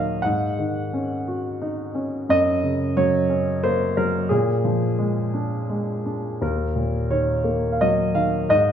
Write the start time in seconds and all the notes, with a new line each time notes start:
Already playing: D#2 A#2 D#3 F#3 A#3 A#4 C#5 D#5 F5
0.22 G#2 F#5
0.59 D#3
0.93 C#4
1.28 F#4
1.62 D#4
1.95 C#4
2.29 F#2 D#5
2.63 C#3
2.97 F#3 C#5
3.30 C#4
3.64 A#3 C5
3.97 F#3 A#4
4.29 A#2 G#4
4.64 F3
4.99 G#3
5.34 D4
5.70 G#3
6.06 D4
6.41 D#2 A#4
6.76 A#2
7.10 D#3 C#5
7.44 A#3
7.72 F5
7.81 F#3 D#5
8.14 D#3 F5
8.49 G#2 D#5